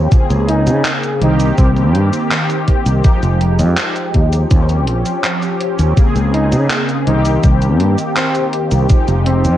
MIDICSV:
0, 0, Header, 1, 6, 480
1, 0, Start_track
1, 0, Tempo, 731707
1, 1038, Time_signature, 4, 2, 24, 8
1, 6281, End_track
2, 0, Start_track
2, 0, Title_t, "Flugelhorn"
2, 0, Program_c, 0, 56
2, 317, Note_on_c, 0, 63, 100
2, 605, Note_off_c, 0, 63, 0
2, 798, Note_on_c, 0, 63, 93
2, 1032, Note_off_c, 0, 63, 0
2, 1036, Note_on_c, 0, 60, 87
2, 1114, Note_off_c, 0, 60, 0
2, 1154, Note_on_c, 0, 60, 73
2, 1232, Note_off_c, 0, 60, 0
2, 4158, Note_on_c, 0, 63, 98
2, 4446, Note_off_c, 0, 63, 0
2, 4637, Note_on_c, 0, 63, 96
2, 4926, Note_off_c, 0, 63, 0
2, 5356, Note_on_c, 0, 60, 93
2, 5645, Note_off_c, 0, 60, 0
2, 6078, Note_on_c, 0, 60, 102
2, 6281, Note_off_c, 0, 60, 0
2, 6281, End_track
3, 0, Start_track
3, 0, Title_t, "Analog polysynth"
3, 0, Program_c, 1, 90
3, 0, Control_c, 1, 64, 127
3, 0, Note_on_c, 1, 53, 81
3, 0, Note_on_c, 1, 60, 77
3, 0, Note_on_c, 1, 61, 73
3, 0, Note_on_c, 1, 67, 94
3, 67, Note_on_c, 1, 49, 86
3, 73, Note_on_c, 1, 58, 81
3, 80, Note_off_c, 1, 60, 0
3, 80, Note_on_c, 1, 60, 75
3, 85, Control_c, 1, 64, 0
3, 87, Note_off_c, 1, 67, 0
3, 87, Note_on_c, 1, 68, 96
3, 90, Note_off_c, 1, 61, 0
3, 91, Note_off_c, 1, 53, 0
3, 215, Control_c, 1, 64, 127
3, 745, Note_off_c, 1, 49, 0
3, 748, Note_off_c, 1, 58, 0
3, 751, Note_off_c, 1, 60, 0
3, 754, Note_off_c, 1, 68, 0
3, 788, Note_on_c, 1, 51, 97
3, 794, Note_on_c, 1, 58, 86
3, 801, Note_on_c, 1, 60, 85
3, 805, Control_c, 1, 64, 0
3, 807, Note_on_c, 1, 67, 102
3, 922, Control_c, 1, 64, 127
3, 1945, Note_off_c, 1, 51, 0
3, 1948, Note_off_c, 1, 58, 0
3, 1952, Note_off_c, 1, 60, 0
3, 1954, Note_off_c, 1, 67, 0
3, 1988, Note_on_c, 1, 53, 82
3, 1994, Note_on_c, 1, 56, 78
3, 2001, Note_on_c, 1, 63, 76
3, 2006, Control_c, 1, 64, 0
3, 2007, Note_on_c, 1, 67, 96
3, 2117, Control_c, 1, 64, 127
3, 2905, Note_off_c, 1, 53, 0
3, 2908, Note_off_c, 1, 56, 0
3, 2912, Note_off_c, 1, 63, 0
3, 2914, Note_off_c, 1, 67, 0
3, 2947, Note_on_c, 1, 53, 85
3, 2954, Note_on_c, 1, 60, 78
3, 2960, Note_on_c, 1, 61, 76
3, 2966, Note_on_c, 1, 67, 89
3, 2967, Control_c, 1, 64, 0
3, 3072, Control_c, 1, 64, 127
3, 3865, Note_off_c, 1, 53, 0
3, 3868, Note_off_c, 1, 60, 0
3, 3871, Note_off_c, 1, 61, 0
3, 3874, Note_off_c, 1, 67, 0
3, 3908, Note_on_c, 1, 49, 83
3, 3915, Note_on_c, 1, 58, 75
3, 3921, Note_on_c, 1, 60, 76
3, 3927, Control_c, 1, 64, 0
3, 3928, Note_on_c, 1, 68, 91
3, 4024, Control_c, 1, 64, 127
3, 4585, Note_off_c, 1, 49, 0
3, 4588, Note_off_c, 1, 58, 0
3, 4591, Note_off_c, 1, 60, 0
3, 4595, Note_off_c, 1, 68, 0
3, 4629, Note_on_c, 1, 51, 97
3, 4635, Note_on_c, 1, 58, 88
3, 4641, Note_on_c, 1, 60, 84
3, 4647, Control_c, 1, 64, 0
3, 4647, Note_on_c, 1, 67, 103
3, 4772, Control_c, 1, 64, 127
3, 5785, Note_off_c, 1, 51, 0
3, 5788, Note_off_c, 1, 58, 0
3, 5791, Note_off_c, 1, 60, 0
3, 5795, Note_off_c, 1, 67, 0
3, 5829, Note_on_c, 1, 53, 81
3, 5836, Note_on_c, 1, 56, 77
3, 5842, Note_on_c, 1, 63, 77
3, 5846, Control_c, 1, 64, 0
3, 5849, Note_on_c, 1, 67, 94
3, 5970, Control_c, 1, 64, 127
3, 6281, Note_off_c, 1, 53, 0
3, 6281, Note_off_c, 1, 56, 0
3, 6281, Note_off_c, 1, 63, 0
3, 6281, Note_off_c, 1, 67, 0
3, 6281, End_track
4, 0, Start_track
4, 0, Title_t, "Fretless electric bass"
4, 0, Program_c, 2, 35
4, 198, Note_on_c, 2, 37, 100
4, 438, Note_on_c, 2, 49, 102
4, 448, Note_off_c, 2, 37, 0
4, 533, Note_off_c, 2, 49, 0
4, 796, Note_on_c, 2, 36, 81
4, 988, Note_off_c, 2, 36, 0
4, 1038, Note_on_c, 2, 36, 94
4, 1276, Note_off_c, 2, 36, 0
4, 1276, Note_on_c, 2, 43, 94
4, 1373, Note_off_c, 2, 43, 0
4, 1877, Note_on_c, 2, 36, 91
4, 1973, Note_off_c, 2, 36, 0
4, 2118, Note_on_c, 2, 29, 97
4, 2358, Note_on_c, 2, 41, 107
4, 2368, Note_off_c, 2, 29, 0
4, 2453, Note_off_c, 2, 41, 0
4, 2719, Note_on_c, 2, 39, 78
4, 2909, Note_off_c, 2, 39, 0
4, 2959, Note_on_c, 2, 39, 99
4, 3198, Note_off_c, 2, 39, 0
4, 3198, Note_on_c, 2, 34, 93
4, 3294, Note_off_c, 2, 34, 0
4, 3799, Note_on_c, 2, 39, 97
4, 3894, Note_off_c, 2, 39, 0
4, 4038, Note_on_c, 2, 37, 98
4, 4278, Note_on_c, 2, 49, 107
4, 4288, Note_off_c, 2, 37, 0
4, 4373, Note_off_c, 2, 49, 0
4, 4638, Note_on_c, 2, 36, 84
4, 4829, Note_off_c, 2, 36, 0
4, 4879, Note_on_c, 2, 36, 101
4, 5119, Note_off_c, 2, 36, 0
4, 5119, Note_on_c, 2, 43, 97
4, 5214, Note_off_c, 2, 43, 0
4, 5719, Note_on_c, 2, 36, 93
4, 5814, Note_off_c, 2, 36, 0
4, 5959, Note_on_c, 2, 29, 96
4, 6199, Note_on_c, 2, 41, 104
4, 6209, Note_off_c, 2, 29, 0
4, 6281, Note_off_c, 2, 41, 0
4, 6281, End_track
5, 0, Start_track
5, 0, Title_t, "Muted fretless electric bass strokes"
5, 78, Note_on_c, 9, 29, 45
5, 143, Note_off_c, 9, 29, 0
5, 3919, Note_on_c, 9, 29, 44
5, 3984, Note_off_c, 9, 29, 0
5, 6281, End_track
6, 0, Start_track
6, 0, Title_t, "Drums"
6, 78, Note_on_c, 9, 36, 127
6, 78, Note_on_c, 9, 42, 85
6, 78, Note_on_c, 9, 69, 47
6, 143, Note_off_c, 9, 36, 0
6, 143, Note_off_c, 9, 42, 0
6, 143, Note_off_c, 9, 69, 0
6, 199, Note_on_c, 9, 42, 37
6, 199, Note_on_c, 9, 69, 28
6, 265, Note_off_c, 9, 42, 0
6, 265, Note_off_c, 9, 69, 0
6, 318, Note_on_c, 9, 42, 85
6, 383, Note_off_c, 9, 42, 0
6, 438, Note_on_c, 9, 42, 50
6, 438, Note_on_c, 9, 69, 50
6, 504, Note_off_c, 9, 42, 0
6, 504, Note_off_c, 9, 69, 0
6, 557, Note_on_c, 9, 39, 127
6, 557, Note_on_c, 9, 42, 89
6, 557, Note_on_c, 9, 69, 49
6, 623, Note_off_c, 9, 39, 0
6, 623, Note_off_c, 9, 42, 0
6, 623, Note_off_c, 9, 69, 0
6, 678, Note_on_c, 9, 42, 37
6, 678, Note_on_c, 9, 69, 26
6, 744, Note_off_c, 9, 42, 0
6, 744, Note_off_c, 9, 69, 0
6, 797, Note_on_c, 9, 42, 80
6, 863, Note_off_c, 9, 42, 0
6, 917, Note_on_c, 9, 42, 58
6, 917, Note_on_c, 9, 69, 54
6, 983, Note_off_c, 9, 42, 0
6, 983, Note_off_c, 9, 69, 0
6, 1037, Note_on_c, 9, 42, 76
6, 1037, Note_on_c, 9, 69, 45
6, 1038, Note_on_c, 9, 36, 122
6, 1103, Note_off_c, 9, 42, 0
6, 1103, Note_off_c, 9, 69, 0
6, 1104, Note_off_c, 9, 36, 0
6, 1158, Note_on_c, 9, 42, 35
6, 1158, Note_on_c, 9, 69, 24
6, 1223, Note_off_c, 9, 42, 0
6, 1223, Note_off_c, 9, 69, 0
6, 1278, Note_on_c, 9, 42, 79
6, 1343, Note_off_c, 9, 42, 0
6, 1398, Note_on_c, 9, 42, 50
6, 1398, Note_on_c, 9, 69, 49
6, 1464, Note_off_c, 9, 42, 0
6, 1464, Note_off_c, 9, 69, 0
6, 1517, Note_on_c, 9, 39, 127
6, 1517, Note_on_c, 9, 42, 79
6, 1517, Note_on_c, 9, 69, 44
6, 1583, Note_off_c, 9, 39, 0
6, 1583, Note_off_c, 9, 42, 0
6, 1583, Note_off_c, 9, 69, 0
6, 1638, Note_on_c, 9, 42, 37
6, 1638, Note_on_c, 9, 69, 27
6, 1704, Note_off_c, 9, 42, 0
6, 1704, Note_off_c, 9, 69, 0
6, 1756, Note_on_c, 9, 42, 80
6, 1758, Note_on_c, 9, 36, 65
6, 1822, Note_off_c, 9, 42, 0
6, 1824, Note_off_c, 9, 36, 0
6, 1878, Note_on_c, 9, 42, 55
6, 1878, Note_on_c, 9, 69, 53
6, 1943, Note_off_c, 9, 42, 0
6, 1943, Note_off_c, 9, 69, 0
6, 1996, Note_on_c, 9, 42, 82
6, 1996, Note_on_c, 9, 69, 46
6, 1998, Note_on_c, 9, 36, 123
6, 2062, Note_off_c, 9, 42, 0
6, 2062, Note_off_c, 9, 69, 0
6, 2064, Note_off_c, 9, 36, 0
6, 2117, Note_on_c, 9, 42, 35
6, 2117, Note_on_c, 9, 69, 26
6, 2183, Note_off_c, 9, 42, 0
6, 2183, Note_off_c, 9, 69, 0
6, 2237, Note_on_c, 9, 42, 77
6, 2302, Note_off_c, 9, 42, 0
6, 2357, Note_on_c, 9, 42, 51
6, 2357, Note_on_c, 9, 69, 51
6, 2423, Note_off_c, 9, 42, 0
6, 2423, Note_off_c, 9, 69, 0
6, 2476, Note_on_c, 9, 39, 123
6, 2476, Note_on_c, 9, 42, 77
6, 2476, Note_on_c, 9, 69, 46
6, 2541, Note_off_c, 9, 39, 0
6, 2541, Note_off_c, 9, 42, 0
6, 2541, Note_off_c, 9, 69, 0
6, 2597, Note_on_c, 9, 42, 37
6, 2597, Note_on_c, 9, 69, 28
6, 2662, Note_off_c, 9, 42, 0
6, 2662, Note_off_c, 9, 69, 0
6, 2716, Note_on_c, 9, 42, 75
6, 2719, Note_on_c, 9, 36, 63
6, 2782, Note_off_c, 9, 42, 0
6, 2784, Note_off_c, 9, 36, 0
6, 2838, Note_on_c, 9, 42, 53
6, 2838, Note_on_c, 9, 69, 51
6, 2903, Note_off_c, 9, 42, 0
6, 2903, Note_off_c, 9, 69, 0
6, 2957, Note_on_c, 9, 42, 80
6, 2957, Note_on_c, 9, 69, 48
6, 2959, Note_on_c, 9, 36, 123
6, 3023, Note_off_c, 9, 42, 0
6, 3023, Note_off_c, 9, 69, 0
6, 3024, Note_off_c, 9, 36, 0
6, 3077, Note_on_c, 9, 42, 34
6, 3077, Note_on_c, 9, 69, 27
6, 3143, Note_off_c, 9, 42, 0
6, 3143, Note_off_c, 9, 69, 0
6, 3197, Note_on_c, 9, 42, 73
6, 3263, Note_off_c, 9, 42, 0
6, 3318, Note_on_c, 9, 42, 49
6, 3318, Note_on_c, 9, 69, 52
6, 3383, Note_off_c, 9, 42, 0
6, 3383, Note_off_c, 9, 69, 0
6, 3438, Note_on_c, 9, 39, 121
6, 3438, Note_on_c, 9, 42, 72
6, 3438, Note_on_c, 9, 69, 47
6, 3504, Note_off_c, 9, 39, 0
6, 3504, Note_off_c, 9, 42, 0
6, 3504, Note_off_c, 9, 69, 0
6, 3559, Note_on_c, 9, 42, 36
6, 3559, Note_on_c, 9, 69, 28
6, 3624, Note_off_c, 9, 42, 0
6, 3624, Note_off_c, 9, 69, 0
6, 3678, Note_on_c, 9, 42, 78
6, 3744, Note_off_c, 9, 42, 0
6, 3799, Note_on_c, 9, 42, 52
6, 3799, Note_on_c, 9, 69, 53
6, 3864, Note_off_c, 9, 42, 0
6, 3864, Note_off_c, 9, 69, 0
6, 3919, Note_on_c, 9, 36, 121
6, 3919, Note_on_c, 9, 42, 81
6, 3919, Note_on_c, 9, 69, 46
6, 3984, Note_off_c, 9, 36, 0
6, 3984, Note_off_c, 9, 42, 0
6, 3984, Note_off_c, 9, 69, 0
6, 4039, Note_on_c, 9, 42, 33
6, 4039, Note_on_c, 9, 69, 26
6, 4105, Note_off_c, 9, 42, 0
6, 4105, Note_off_c, 9, 69, 0
6, 4159, Note_on_c, 9, 42, 79
6, 4224, Note_off_c, 9, 42, 0
6, 4278, Note_on_c, 9, 42, 50
6, 4278, Note_on_c, 9, 69, 53
6, 4344, Note_off_c, 9, 42, 0
6, 4344, Note_off_c, 9, 69, 0
6, 4397, Note_on_c, 9, 39, 125
6, 4397, Note_on_c, 9, 42, 78
6, 4397, Note_on_c, 9, 69, 44
6, 4463, Note_off_c, 9, 39, 0
6, 4463, Note_off_c, 9, 42, 0
6, 4463, Note_off_c, 9, 69, 0
6, 4519, Note_on_c, 9, 42, 37
6, 4519, Note_on_c, 9, 69, 27
6, 4584, Note_off_c, 9, 42, 0
6, 4584, Note_off_c, 9, 69, 0
6, 4637, Note_on_c, 9, 42, 77
6, 4703, Note_off_c, 9, 42, 0
6, 4757, Note_on_c, 9, 42, 52
6, 4757, Note_on_c, 9, 69, 53
6, 4823, Note_off_c, 9, 42, 0
6, 4823, Note_off_c, 9, 69, 0
6, 4878, Note_on_c, 9, 42, 78
6, 4878, Note_on_c, 9, 69, 46
6, 4879, Note_on_c, 9, 36, 114
6, 4943, Note_off_c, 9, 42, 0
6, 4943, Note_off_c, 9, 69, 0
6, 4945, Note_off_c, 9, 36, 0
6, 4998, Note_on_c, 9, 42, 35
6, 4998, Note_on_c, 9, 69, 27
6, 5064, Note_off_c, 9, 42, 0
6, 5064, Note_off_c, 9, 69, 0
6, 5117, Note_on_c, 9, 42, 73
6, 5183, Note_off_c, 9, 42, 0
6, 5237, Note_on_c, 9, 42, 49
6, 5237, Note_on_c, 9, 69, 54
6, 5303, Note_off_c, 9, 42, 0
6, 5303, Note_off_c, 9, 69, 0
6, 5357, Note_on_c, 9, 39, 116
6, 5357, Note_on_c, 9, 42, 77
6, 5357, Note_on_c, 9, 69, 48
6, 5422, Note_off_c, 9, 39, 0
6, 5422, Note_off_c, 9, 42, 0
6, 5422, Note_off_c, 9, 69, 0
6, 5477, Note_on_c, 9, 42, 35
6, 5477, Note_on_c, 9, 69, 28
6, 5542, Note_off_c, 9, 42, 0
6, 5542, Note_off_c, 9, 69, 0
6, 5597, Note_on_c, 9, 42, 78
6, 5662, Note_off_c, 9, 42, 0
6, 5717, Note_on_c, 9, 42, 51
6, 5717, Note_on_c, 9, 69, 56
6, 5782, Note_off_c, 9, 42, 0
6, 5782, Note_off_c, 9, 69, 0
6, 5836, Note_on_c, 9, 42, 77
6, 5836, Note_on_c, 9, 69, 48
6, 5839, Note_on_c, 9, 36, 113
6, 5901, Note_off_c, 9, 42, 0
6, 5901, Note_off_c, 9, 69, 0
6, 5904, Note_off_c, 9, 36, 0
6, 5956, Note_on_c, 9, 42, 35
6, 5956, Note_on_c, 9, 69, 28
6, 6022, Note_off_c, 9, 42, 0
6, 6022, Note_off_c, 9, 69, 0
6, 6076, Note_on_c, 9, 42, 81
6, 6142, Note_off_c, 9, 42, 0
6, 6198, Note_on_c, 9, 42, 49
6, 6198, Note_on_c, 9, 69, 53
6, 6264, Note_off_c, 9, 42, 0
6, 6264, Note_off_c, 9, 69, 0
6, 6281, End_track
0, 0, End_of_file